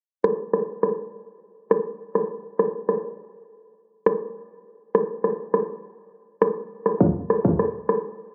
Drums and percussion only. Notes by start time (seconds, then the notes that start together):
0.24 cross-stick
0.53 cross-stick
0.83 cross-stick
1.71 cross-stick
2.15 cross-stick
2.59 cross-stick
2.89 cross-stick
4.06 cross-stick
4.95 cross-stick
5.24 cross-stick
5.54 cross-stick
6.42 cross-stick
6.86 cross-stick
7.01 kick
7.30 cross-stick
7.45 kick
7.59 cross-stick
7.89 cross-stick